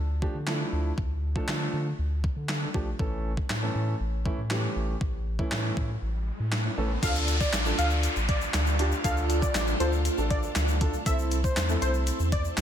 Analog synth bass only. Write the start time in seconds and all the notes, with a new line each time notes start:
Already playing: D2
0.35 D3
0.72 D2
0.98 D2
1.48 D3
1.73 D3
1.99 D2
2.36 D3
2.74 A#1
2.99 A1
3.50 A2
3.75 A2
4.00 A1
4.38 A2
4.76 A1
5.01 A1
5.51 A2
5.77 A2
6.02 A1
6.40 A2
6.77 A1
7.03 D2
7.53 A1
7.78 D2
8.16 A1
8.54 D2
9.04 D2
9.55 A1
9.80 D2
10.18 A1
10.56 D2
11.06 C2
11.57 E2
11.82 C2
12.20 E2
12.57 C2